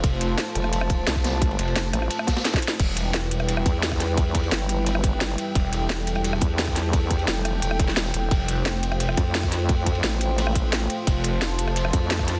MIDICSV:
0, 0, Header, 1, 5, 480
1, 0, Start_track
1, 0, Tempo, 344828
1, 52, Time_signature, 4, 2, 24, 8
1, 17255, End_track
2, 0, Start_track
2, 0, Title_t, "Analog synth pad"
2, 0, Program_c, 0, 89
2, 0, Note_on_c, 0, 57, 87
2, 0, Note_on_c, 0, 65, 79
2, 0, Note_on_c, 0, 72, 80
2, 53, Note_on_c, 0, 81, 95
2, 3837, Note_off_c, 0, 57, 0
2, 3837, Note_off_c, 0, 65, 0
2, 3837, Note_off_c, 0, 72, 0
2, 3854, Note_off_c, 0, 81, 0
2, 3892, Note_on_c, 0, 55, 88
2, 3892, Note_on_c, 0, 64, 80
2, 3892, Note_on_c, 0, 71, 81
2, 3892, Note_on_c, 0, 79, 94
2, 7693, Note_off_c, 0, 71, 0
2, 7733, Note_on_c, 0, 69, 79
2, 11516, Note_off_c, 0, 55, 0
2, 11516, Note_off_c, 0, 64, 0
2, 11534, Note_off_c, 0, 69, 0
2, 11570, Note_on_c, 0, 57, 86
2, 11570, Note_on_c, 0, 72, 81
2, 11571, Note_on_c, 0, 65, 80
2, 15356, Note_off_c, 0, 79, 0
2, 15411, Note_on_c, 0, 81, 96
2, 17255, Note_off_c, 0, 57, 0
2, 17255, Note_off_c, 0, 65, 0
2, 17255, Note_off_c, 0, 72, 0
2, 17255, Note_off_c, 0, 81, 0
2, 17255, End_track
3, 0, Start_track
3, 0, Title_t, "Wobble bass"
3, 0, Program_c, 1, 39
3, 772, Note_on_c, 1, 29, 100
3, 1473, Note_off_c, 1, 29, 0
3, 1492, Note_on_c, 1, 36, 100
3, 2193, Note_off_c, 1, 36, 0
3, 2692, Note_on_c, 1, 33, 99
3, 2913, Note_off_c, 1, 33, 0
3, 5092, Note_on_c, 1, 40, 97
3, 6272, Note_off_c, 1, 40, 0
3, 6292, Note_on_c, 1, 31, 98
3, 7473, Note_off_c, 1, 31, 0
3, 8932, Note_on_c, 1, 40, 95
3, 10113, Note_off_c, 1, 40, 0
3, 10131, Note_on_c, 1, 29, 99
3, 10592, Note_off_c, 1, 29, 0
3, 10612, Note_on_c, 1, 28, 93
3, 11313, Note_off_c, 1, 28, 0
3, 11331, Note_on_c, 1, 28, 100
3, 11552, Note_off_c, 1, 28, 0
3, 12772, Note_on_c, 1, 41, 96
3, 13952, Note_off_c, 1, 41, 0
3, 13972, Note_on_c, 1, 33, 96
3, 15153, Note_off_c, 1, 33, 0
3, 16611, Note_on_c, 1, 41, 98
3, 17255, Note_off_c, 1, 41, 0
3, 17255, End_track
4, 0, Start_track
4, 0, Title_t, "Detuned saw bass"
4, 0, Program_c, 2, 39
4, 51, Note_on_c, 2, 29, 97
4, 512, Note_off_c, 2, 29, 0
4, 2212, Note_on_c, 2, 29, 94
4, 2673, Note_off_c, 2, 29, 0
4, 3892, Note_on_c, 2, 28, 100
4, 5073, Note_off_c, 2, 28, 0
4, 7731, Note_on_c, 2, 28, 100
4, 8912, Note_off_c, 2, 28, 0
4, 11572, Note_on_c, 2, 29, 98
4, 12753, Note_off_c, 2, 29, 0
4, 15412, Note_on_c, 2, 29, 99
4, 16593, Note_off_c, 2, 29, 0
4, 17255, End_track
5, 0, Start_track
5, 0, Title_t, "Drums"
5, 48, Note_on_c, 9, 51, 82
5, 51, Note_on_c, 9, 36, 113
5, 52, Note_on_c, 9, 42, 86
5, 187, Note_off_c, 9, 51, 0
5, 190, Note_off_c, 9, 36, 0
5, 191, Note_off_c, 9, 42, 0
5, 292, Note_on_c, 9, 42, 100
5, 298, Note_on_c, 9, 51, 65
5, 431, Note_off_c, 9, 42, 0
5, 437, Note_off_c, 9, 51, 0
5, 523, Note_on_c, 9, 38, 118
5, 525, Note_on_c, 9, 51, 90
5, 532, Note_off_c, 9, 38, 0
5, 532, Note_on_c, 9, 38, 111
5, 532, Note_on_c, 9, 42, 81
5, 664, Note_off_c, 9, 51, 0
5, 671, Note_off_c, 9, 38, 0
5, 671, Note_off_c, 9, 42, 0
5, 767, Note_on_c, 9, 51, 69
5, 772, Note_on_c, 9, 42, 97
5, 889, Note_off_c, 9, 51, 0
5, 889, Note_on_c, 9, 51, 41
5, 892, Note_on_c, 9, 37, 37
5, 911, Note_off_c, 9, 42, 0
5, 1012, Note_on_c, 9, 42, 83
5, 1017, Note_off_c, 9, 51, 0
5, 1017, Note_on_c, 9, 51, 83
5, 1031, Note_off_c, 9, 37, 0
5, 1132, Note_on_c, 9, 37, 57
5, 1151, Note_off_c, 9, 42, 0
5, 1157, Note_off_c, 9, 51, 0
5, 1246, Note_on_c, 9, 51, 67
5, 1251, Note_on_c, 9, 36, 101
5, 1253, Note_on_c, 9, 42, 101
5, 1271, Note_off_c, 9, 37, 0
5, 1385, Note_off_c, 9, 51, 0
5, 1391, Note_off_c, 9, 36, 0
5, 1392, Note_off_c, 9, 42, 0
5, 1482, Note_on_c, 9, 51, 91
5, 1486, Note_on_c, 9, 38, 118
5, 1493, Note_off_c, 9, 38, 0
5, 1493, Note_on_c, 9, 38, 116
5, 1493, Note_on_c, 9, 42, 81
5, 1612, Note_on_c, 9, 36, 60
5, 1613, Note_on_c, 9, 37, 37
5, 1617, Note_off_c, 9, 38, 0
5, 1617, Note_on_c, 9, 38, 43
5, 1621, Note_off_c, 9, 51, 0
5, 1632, Note_off_c, 9, 42, 0
5, 1732, Note_on_c, 9, 42, 95
5, 1734, Note_off_c, 9, 38, 0
5, 1734, Note_on_c, 9, 38, 104
5, 1736, Note_on_c, 9, 51, 79
5, 1751, Note_off_c, 9, 36, 0
5, 1752, Note_off_c, 9, 37, 0
5, 1871, Note_off_c, 9, 42, 0
5, 1874, Note_off_c, 9, 38, 0
5, 1875, Note_off_c, 9, 51, 0
5, 1967, Note_on_c, 9, 51, 61
5, 1971, Note_on_c, 9, 36, 118
5, 1972, Note_on_c, 9, 42, 87
5, 2101, Note_off_c, 9, 51, 0
5, 2101, Note_on_c, 9, 51, 39
5, 2111, Note_off_c, 9, 36, 0
5, 2112, Note_off_c, 9, 42, 0
5, 2212, Note_on_c, 9, 42, 98
5, 2213, Note_off_c, 9, 51, 0
5, 2213, Note_on_c, 9, 51, 69
5, 2332, Note_off_c, 9, 51, 0
5, 2332, Note_on_c, 9, 51, 44
5, 2352, Note_off_c, 9, 42, 0
5, 2451, Note_off_c, 9, 51, 0
5, 2451, Note_on_c, 9, 51, 91
5, 2453, Note_on_c, 9, 38, 115
5, 2453, Note_on_c, 9, 42, 82
5, 2454, Note_off_c, 9, 38, 0
5, 2454, Note_on_c, 9, 38, 126
5, 2590, Note_off_c, 9, 51, 0
5, 2592, Note_off_c, 9, 42, 0
5, 2593, Note_off_c, 9, 38, 0
5, 2691, Note_on_c, 9, 51, 69
5, 2692, Note_on_c, 9, 37, 56
5, 2692, Note_on_c, 9, 42, 97
5, 2812, Note_off_c, 9, 37, 0
5, 2812, Note_on_c, 9, 37, 36
5, 2830, Note_off_c, 9, 51, 0
5, 2831, Note_off_c, 9, 42, 0
5, 2927, Note_on_c, 9, 51, 90
5, 2932, Note_on_c, 9, 42, 88
5, 2951, Note_off_c, 9, 37, 0
5, 3053, Note_on_c, 9, 37, 59
5, 3066, Note_off_c, 9, 51, 0
5, 3071, Note_off_c, 9, 42, 0
5, 3164, Note_on_c, 9, 38, 110
5, 3164, Note_on_c, 9, 51, 74
5, 3172, Note_on_c, 9, 36, 59
5, 3172, Note_on_c, 9, 42, 100
5, 3192, Note_off_c, 9, 37, 0
5, 3292, Note_off_c, 9, 38, 0
5, 3292, Note_off_c, 9, 51, 0
5, 3292, Note_on_c, 9, 38, 104
5, 3292, Note_on_c, 9, 51, 83
5, 3311, Note_off_c, 9, 36, 0
5, 3311, Note_off_c, 9, 42, 0
5, 3411, Note_off_c, 9, 38, 0
5, 3411, Note_on_c, 9, 38, 116
5, 3412, Note_off_c, 9, 38, 0
5, 3412, Note_on_c, 9, 38, 68
5, 3412, Note_on_c, 9, 42, 83
5, 3413, Note_off_c, 9, 51, 0
5, 3413, Note_on_c, 9, 51, 89
5, 3529, Note_off_c, 9, 38, 0
5, 3529, Note_on_c, 9, 38, 66
5, 3532, Note_on_c, 9, 36, 105
5, 3551, Note_off_c, 9, 42, 0
5, 3552, Note_off_c, 9, 51, 0
5, 3572, Note_off_c, 9, 38, 0
5, 3572, Note_on_c, 9, 38, 86
5, 3651, Note_on_c, 9, 42, 96
5, 3657, Note_on_c, 9, 51, 70
5, 3671, Note_off_c, 9, 36, 0
5, 3711, Note_off_c, 9, 38, 0
5, 3731, Note_on_c, 9, 38, 94
5, 3791, Note_off_c, 9, 42, 0
5, 3797, Note_off_c, 9, 51, 0
5, 3871, Note_off_c, 9, 38, 0
5, 3892, Note_on_c, 9, 36, 118
5, 3892, Note_on_c, 9, 42, 85
5, 3892, Note_on_c, 9, 49, 110
5, 3899, Note_on_c, 9, 51, 93
5, 4031, Note_off_c, 9, 36, 0
5, 4031, Note_off_c, 9, 42, 0
5, 4031, Note_off_c, 9, 49, 0
5, 4038, Note_off_c, 9, 51, 0
5, 4127, Note_on_c, 9, 51, 73
5, 4132, Note_on_c, 9, 42, 98
5, 4266, Note_off_c, 9, 51, 0
5, 4271, Note_off_c, 9, 42, 0
5, 4369, Note_on_c, 9, 38, 114
5, 4372, Note_off_c, 9, 38, 0
5, 4372, Note_on_c, 9, 38, 117
5, 4372, Note_on_c, 9, 42, 81
5, 4378, Note_on_c, 9, 51, 81
5, 4511, Note_off_c, 9, 38, 0
5, 4511, Note_off_c, 9, 42, 0
5, 4517, Note_off_c, 9, 51, 0
5, 4611, Note_on_c, 9, 51, 69
5, 4612, Note_on_c, 9, 42, 96
5, 4726, Note_off_c, 9, 51, 0
5, 4726, Note_on_c, 9, 51, 47
5, 4732, Note_on_c, 9, 37, 38
5, 4751, Note_off_c, 9, 42, 0
5, 4852, Note_on_c, 9, 42, 85
5, 4853, Note_off_c, 9, 51, 0
5, 4853, Note_on_c, 9, 51, 81
5, 4871, Note_off_c, 9, 37, 0
5, 4972, Note_on_c, 9, 37, 59
5, 4991, Note_off_c, 9, 42, 0
5, 4992, Note_off_c, 9, 51, 0
5, 5091, Note_on_c, 9, 36, 108
5, 5091, Note_on_c, 9, 42, 100
5, 5096, Note_on_c, 9, 51, 73
5, 5111, Note_off_c, 9, 37, 0
5, 5230, Note_off_c, 9, 36, 0
5, 5231, Note_off_c, 9, 42, 0
5, 5235, Note_off_c, 9, 51, 0
5, 5332, Note_on_c, 9, 38, 121
5, 5332, Note_on_c, 9, 42, 83
5, 5335, Note_off_c, 9, 38, 0
5, 5335, Note_on_c, 9, 38, 118
5, 5339, Note_on_c, 9, 51, 98
5, 5451, Note_off_c, 9, 38, 0
5, 5451, Note_on_c, 9, 36, 64
5, 5451, Note_on_c, 9, 38, 52
5, 5452, Note_on_c, 9, 37, 39
5, 5471, Note_off_c, 9, 42, 0
5, 5478, Note_off_c, 9, 51, 0
5, 5573, Note_off_c, 9, 38, 0
5, 5573, Note_on_c, 9, 38, 37
5, 5573, Note_on_c, 9, 42, 96
5, 5587, Note_on_c, 9, 51, 75
5, 5591, Note_off_c, 9, 36, 0
5, 5592, Note_off_c, 9, 37, 0
5, 5712, Note_off_c, 9, 38, 0
5, 5712, Note_off_c, 9, 42, 0
5, 5726, Note_off_c, 9, 51, 0
5, 5810, Note_on_c, 9, 51, 86
5, 5811, Note_on_c, 9, 36, 123
5, 5812, Note_on_c, 9, 42, 81
5, 5949, Note_off_c, 9, 51, 0
5, 5950, Note_off_c, 9, 36, 0
5, 5951, Note_off_c, 9, 42, 0
5, 6051, Note_on_c, 9, 36, 65
5, 6051, Note_on_c, 9, 42, 93
5, 6055, Note_on_c, 9, 51, 71
5, 6172, Note_off_c, 9, 51, 0
5, 6172, Note_on_c, 9, 51, 49
5, 6190, Note_off_c, 9, 36, 0
5, 6190, Note_off_c, 9, 42, 0
5, 6286, Note_on_c, 9, 38, 126
5, 6292, Note_off_c, 9, 38, 0
5, 6292, Note_on_c, 9, 38, 127
5, 6292, Note_on_c, 9, 42, 81
5, 6303, Note_off_c, 9, 51, 0
5, 6303, Note_on_c, 9, 51, 97
5, 6431, Note_off_c, 9, 38, 0
5, 6431, Note_off_c, 9, 42, 0
5, 6442, Note_off_c, 9, 51, 0
5, 6529, Note_on_c, 9, 51, 68
5, 6531, Note_on_c, 9, 42, 94
5, 6668, Note_off_c, 9, 51, 0
5, 6670, Note_off_c, 9, 42, 0
5, 6770, Note_on_c, 9, 51, 82
5, 6772, Note_on_c, 9, 42, 83
5, 6892, Note_on_c, 9, 37, 61
5, 6909, Note_off_c, 9, 51, 0
5, 6911, Note_off_c, 9, 42, 0
5, 7008, Note_on_c, 9, 51, 68
5, 7011, Note_on_c, 9, 36, 111
5, 7012, Note_on_c, 9, 42, 99
5, 7031, Note_off_c, 9, 37, 0
5, 7147, Note_off_c, 9, 51, 0
5, 7151, Note_off_c, 9, 36, 0
5, 7151, Note_off_c, 9, 42, 0
5, 7248, Note_on_c, 9, 51, 81
5, 7250, Note_on_c, 9, 38, 105
5, 7251, Note_off_c, 9, 38, 0
5, 7251, Note_on_c, 9, 38, 126
5, 7251, Note_on_c, 9, 42, 83
5, 7387, Note_off_c, 9, 51, 0
5, 7391, Note_off_c, 9, 38, 0
5, 7391, Note_off_c, 9, 42, 0
5, 7492, Note_on_c, 9, 42, 93
5, 7501, Note_on_c, 9, 51, 75
5, 7631, Note_off_c, 9, 42, 0
5, 7640, Note_off_c, 9, 51, 0
5, 7731, Note_on_c, 9, 36, 127
5, 7732, Note_on_c, 9, 42, 80
5, 7736, Note_on_c, 9, 51, 97
5, 7871, Note_off_c, 9, 36, 0
5, 7871, Note_off_c, 9, 42, 0
5, 7876, Note_off_c, 9, 51, 0
5, 7972, Note_on_c, 9, 42, 94
5, 7978, Note_on_c, 9, 51, 69
5, 8111, Note_off_c, 9, 42, 0
5, 8117, Note_off_c, 9, 51, 0
5, 8201, Note_on_c, 9, 38, 120
5, 8205, Note_on_c, 9, 51, 100
5, 8212, Note_off_c, 9, 38, 0
5, 8212, Note_on_c, 9, 38, 125
5, 8212, Note_on_c, 9, 42, 77
5, 8344, Note_off_c, 9, 51, 0
5, 8351, Note_off_c, 9, 38, 0
5, 8351, Note_off_c, 9, 42, 0
5, 8452, Note_on_c, 9, 42, 90
5, 8452, Note_on_c, 9, 51, 77
5, 8563, Note_off_c, 9, 51, 0
5, 8563, Note_on_c, 9, 51, 46
5, 8572, Note_on_c, 9, 37, 38
5, 8591, Note_off_c, 9, 42, 0
5, 8693, Note_on_c, 9, 42, 81
5, 8696, Note_off_c, 9, 51, 0
5, 8696, Note_on_c, 9, 51, 85
5, 8712, Note_off_c, 9, 37, 0
5, 8812, Note_on_c, 9, 37, 59
5, 8832, Note_off_c, 9, 42, 0
5, 8835, Note_off_c, 9, 51, 0
5, 8922, Note_on_c, 9, 51, 66
5, 8931, Note_on_c, 9, 36, 114
5, 8932, Note_on_c, 9, 42, 95
5, 8951, Note_off_c, 9, 37, 0
5, 9061, Note_off_c, 9, 51, 0
5, 9070, Note_off_c, 9, 36, 0
5, 9071, Note_off_c, 9, 42, 0
5, 9158, Note_on_c, 9, 51, 98
5, 9168, Note_on_c, 9, 38, 127
5, 9172, Note_off_c, 9, 38, 0
5, 9172, Note_on_c, 9, 38, 127
5, 9172, Note_on_c, 9, 42, 77
5, 9286, Note_off_c, 9, 38, 0
5, 9286, Note_on_c, 9, 38, 45
5, 9291, Note_on_c, 9, 36, 66
5, 9291, Note_on_c, 9, 37, 39
5, 9297, Note_off_c, 9, 51, 0
5, 9311, Note_off_c, 9, 42, 0
5, 9407, Note_on_c, 9, 51, 76
5, 9411, Note_off_c, 9, 38, 0
5, 9411, Note_on_c, 9, 38, 38
5, 9411, Note_on_c, 9, 42, 90
5, 9431, Note_off_c, 9, 36, 0
5, 9431, Note_off_c, 9, 37, 0
5, 9547, Note_off_c, 9, 51, 0
5, 9551, Note_off_c, 9, 38, 0
5, 9551, Note_off_c, 9, 42, 0
5, 9651, Note_on_c, 9, 36, 125
5, 9651, Note_on_c, 9, 42, 79
5, 9651, Note_on_c, 9, 51, 86
5, 9790, Note_off_c, 9, 36, 0
5, 9790, Note_off_c, 9, 42, 0
5, 9790, Note_off_c, 9, 51, 0
5, 9891, Note_on_c, 9, 36, 65
5, 9891, Note_on_c, 9, 42, 91
5, 9891, Note_on_c, 9, 51, 65
5, 10007, Note_off_c, 9, 51, 0
5, 10007, Note_on_c, 9, 51, 44
5, 10030, Note_off_c, 9, 36, 0
5, 10030, Note_off_c, 9, 42, 0
5, 10130, Note_off_c, 9, 51, 0
5, 10130, Note_on_c, 9, 51, 88
5, 10131, Note_on_c, 9, 38, 123
5, 10131, Note_on_c, 9, 42, 77
5, 10139, Note_off_c, 9, 38, 0
5, 10139, Note_on_c, 9, 38, 127
5, 10269, Note_off_c, 9, 51, 0
5, 10271, Note_off_c, 9, 42, 0
5, 10278, Note_off_c, 9, 38, 0
5, 10371, Note_on_c, 9, 51, 70
5, 10372, Note_on_c, 9, 37, 55
5, 10372, Note_on_c, 9, 42, 89
5, 10510, Note_off_c, 9, 51, 0
5, 10511, Note_off_c, 9, 37, 0
5, 10511, Note_off_c, 9, 42, 0
5, 10607, Note_on_c, 9, 51, 89
5, 10612, Note_on_c, 9, 42, 80
5, 10732, Note_on_c, 9, 37, 57
5, 10747, Note_off_c, 9, 51, 0
5, 10751, Note_off_c, 9, 42, 0
5, 10851, Note_on_c, 9, 36, 110
5, 10852, Note_on_c, 9, 42, 90
5, 10854, Note_on_c, 9, 51, 70
5, 10871, Note_off_c, 9, 37, 0
5, 10971, Note_on_c, 9, 38, 38
5, 10991, Note_off_c, 9, 36, 0
5, 10991, Note_off_c, 9, 42, 0
5, 10994, Note_off_c, 9, 51, 0
5, 11086, Note_off_c, 9, 38, 0
5, 11086, Note_on_c, 9, 38, 127
5, 11088, Note_on_c, 9, 51, 89
5, 11091, Note_off_c, 9, 38, 0
5, 11091, Note_on_c, 9, 38, 123
5, 11091, Note_on_c, 9, 42, 77
5, 11210, Note_off_c, 9, 38, 0
5, 11210, Note_on_c, 9, 38, 61
5, 11227, Note_off_c, 9, 51, 0
5, 11230, Note_off_c, 9, 42, 0
5, 11328, Note_on_c, 9, 51, 69
5, 11331, Note_on_c, 9, 42, 87
5, 11349, Note_off_c, 9, 38, 0
5, 11467, Note_off_c, 9, 51, 0
5, 11470, Note_off_c, 9, 42, 0
5, 11571, Note_on_c, 9, 36, 120
5, 11571, Note_on_c, 9, 42, 78
5, 11573, Note_on_c, 9, 51, 93
5, 11710, Note_off_c, 9, 36, 0
5, 11710, Note_off_c, 9, 42, 0
5, 11713, Note_off_c, 9, 51, 0
5, 11804, Note_on_c, 9, 51, 63
5, 11812, Note_on_c, 9, 42, 92
5, 11943, Note_off_c, 9, 51, 0
5, 11951, Note_off_c, 9, 42, 0
5, 12050, Note_on_c, 9, 51, 84
5, 12051, Note_on_c, 9, 38, 117
5, 12051, Note_on_c, 9, 42, 76
5, 12055, Note_off_c, 9, 38, 0
5, 12055, Note_on_c, 9, 38, 127
5, 12190, Note_off_c, 9, 42, 0
5, 12190, Note_off_c, 9, 51, 0
5, 12195, Note_off_c, 9, 38, 0
5, 12291, Note_on_c, 9, 42, 90
5, 12295, Note_on_c, 9, 51, 74
5, 12410, Note_off_c, 9, 51, 0
5, 12410, Note_on_c, 9, 51, 46
5, 12411, Note_on_c, 9, 37, 36
5, 12430, Note_off_c, 9, 42, 0
5, 12527, Note_off_c, 9, 51, 0
5, 12527, Note_on_c, 9, 51, 82
5, 12531, Note_on_c, 9, 42, 80
5, 12551, Note_off_c, 9, 37, 0
5, 12651, Note_on_c, 9, 37, 55
5, 12666, Note_off_c, 9, 51, 0
5, 12670, Note_off_c, 9, 42, 0
5, 12768, Note_on_c, 9, 51, 75
5, 12770, Note_on_c, 9, 42, 90
5, 12771, Note_on_c, 9, 36, 111
5, 12790, Note_off_c, 9, 37, 0
5, 12907, Note_off_c, 9, 51, 0
5, 12910, Note_off_c, 9, 42, 0
5, 12911, Note_off_c, 9, 36, 0
5, 13011, Note_on_c, 9, 38, 119
5, 13011, Note_on_c, 9, 42, 75
5, 13012, Note_off_c, 9, 38, 0
5, 13012, Note_on_c, 9, 38, 127
5, 13012, Note_on_c, 9, 51, 93
5, 13131, Note_on_c, 9, 37, 37
5, 13132, Note_on_c, 9, 36, 64
5, 13135, Note_off_c, 9, 38, 0
5, 13135, Note_on_c, 9, 38, 51
5, 13150, Note_off_c, 9, 42, 0
5, 13151, Note_off_c, 9, 51, 0
5, 13252, Note_off_c, 9, 38, 0
5, 13252, Note_on_c, 9, 38, 36
5, 13252, Note_on_c, 9, 42, 88
5, 13260, Note_on_c, 9, 51, 79
5, 13270, Note_off_c, 9, 37, 0
5, 13271, Note_off_c, 9, 36, 0
5, 13391, Note_off_c, 9, 38, 0
5, 13391, Note_off_c, 9, 42, 0
5, 13399, Note_off_c, 9, 51, 0
5, 13483, Note_on_c, 9, 51, 88
5, 13491, Note_on_c, 9, 36, 117
5, 13491, Note_on_c, 9, 42, 83
5, 13622, Note_off_c, 9, 51, 0
5, 13630, Note_off_c, 9, 42, 0
5, 13631, Note_off_c, 9, 36, 0
5, 13731, Note_on_c, 9, 51, 68
5, 13732, Note_on_c, 9, 36, 60
5, 13732, Note_on_c, 9, 42, 95
5, 13848, Note_off_c, 9, 51, 0
5, 13848, Note_on_c, 9, 51, 41
5, 13871, Note_off_c, 9, 36, 0
5, 13871, Note_off_c, 9, 42, 0
5, 13969, Note_off_c, 9, 51, 0
5, 13969, Note_on_c, 9, 51, 84
5, 13971, Note_on_c, 9, 38, 116
5, 13971, Note_on_c, 9, 42, 82
5, 13979, Note_off_c, 9, 38, 0
5, 13979, Note_on_c, 9, 38, 120
5, 14108, Note_off_c, 9, 51, 0
5, 14110, Note_off_c, 9, 42, 0
5, 14118, Note_off_c, 9, 38, 0
5, 14207, Note_on_c, 9, 51, 74
5, 14212, Note_on_c, 9, 42, 92
5, 14346, Note_off_c, 9, 51, 0
5, 14351, Note_off_c, 9, 42, 0
5, 14452, Note_on_c, 9, 42, 81
5, 14455, Note_on_c, 9, 51, 89
5, 14572, Note_on_c, 9, 37, 55
5, 14591, Note_off_c, 9, 42, 0
5, 14594, Note_off_c, 9, 51, 0
5, 14692, Note_on_c, 9, 36, 105
5, 14693, Note_on_c, 9, 42, 99
5, 14694, Note_on_c, 9, 51, 77
5, 14711, Note_off_c, 9, 37, 0
5, 14831, Note_off_c, 9, 36, 0
5, 14832, Note_off_c, 9, 42, 0
5, 14833, Note_off_c, 9, 51, 0
5, 14925, Note_on_c, 9, 38, 109
5, 14933, Note_off_c, 9, 38, 0
5, 14933, Note_on_c, 9, 38, 118
5, 14933, Note_on_c, 9, 42, 80
5, 14940, Note_on_c, 9, 51, 83
5, 15072, Note_off_c, 9, 38, 0
5, 15072, Note_off_c, 9, 42, 0
5, 15080, Note_off_c, 9, 51, 0
5, 15167, Note_on_c, 9, 51, 74
5, 15172, Note_on_c, 9, 42, 89
5, 15306, Note_off_c, 9, 51, 0
5, 15311, Note_off_c, 9, 42, 0
5, 15412, Note_on_c, 9, 36, 115
5, 15412, Note_on_c, 9, 42, 85
5, 15413, Note_on_c, 9, 51, 92
5, 15551, Note_off_c, 9, 36, 0
5, 15551, Note_off_c, 9, 42, 0
5, 15552, Note_off_c, 9, 51, 0
5, 15642, Note_on_c, 9, 51, 68
5, 15652, Note_on_c, 9, 42, 99
5, 15781, Note_off_c, 9, 51, 0
5, 15791, Note_off_c, 9, 42, 0
5, 15892, Note_on_c, 9, 38, 113
5, 15892, Note_on_c, 9, 42, 82
5, 15893, Note_on_c, 9, 51, 83
5, 15897, Note_off_c, 9, 38, 0
5, 15897, Note_on_c, 9, 38, 125
5, 16031, Note_off_c, 9, 42, 0
5, 16033, Note_off_c, 9, 51, 0
5, 16036, Note_off_c, 9, 38, 0
5, 16124, Note_on_c, 9, 51, 73
5, 16132, Note_on_c, 9, 42, 95
5, 16248, Note_off_c, 9, 51, 0
5, 16248, Note_on_c, 9, 51, 43
5, 16252, Note_on_c, 9, 37, 35
5, 16271, Note_off_c, 9, 42, 0
5, 16371, Note_on_c, 9, 42, 84
5, 16383, Note_off_c, 9, 51, 0
5, 16383, Note_on_c, 9, 51, 84
5, 16391, Note_off_c, 9, 37, 0
5, 16492, Note_on_c, 9, 37, 58
5, 16511, Note_off_c, 9, 42, 0
5, 16522, Note_off_c, 9, 51, 0
5, 16612, Note_on_c, 9, 36, 103
5, 16612, Note_on_c, 9, 42, 99
5, 16612, Note_on_c, 9, 51, 75
5, 16631, Note_off_c, 9, 37, 0
5, 16751, Note_off_c, 9, 36, 0
5, 16751, Note_off_c, 9, 42, 0
5, 16751, Note_off_c, 9, 51, 0
5, 16850, Note_on_c, 9, 51, 94
5, 16851, Note_on_c, 9, 38, 125
5, 16852, Note_off_c, 9, 38, 0
5, 16852, Note_on_c, 9, 38, 117
5, 16852, Note_on_c, 9, 42, 81
5, 16966, Note_off_c, 9, 38, 0
5, 16966, Note_on_c, 9, 38, 49
5, 16972, Note_on_c, 9, 36, 61
5, 16972, Note_on_c, 9, 37, 38
5, 16989, Note_off_c, 9, 51, 0
5, 16991, Note_off_c, 9, 42, 0
5, 17092, Note_off_c, 9, 38, 0
5, 17092, Note_on_c, 9, 38, 35
5, 17092, Note_on_c, 9, 42, 95
5, 17095, Note_on_c, 9, 51, 67
5, 17111, Note_off_c, 9, 36, 0
5, 17111, Note_off_c, 9, 37, 0
5, 17231, Note_off_c, 9, 38, 0
5, 17231, Note_off_c, 9, 42, 0
5, 17234, Note_off_c, 9, 51, 0
5, 17255, End_track
0, 0, End_of_file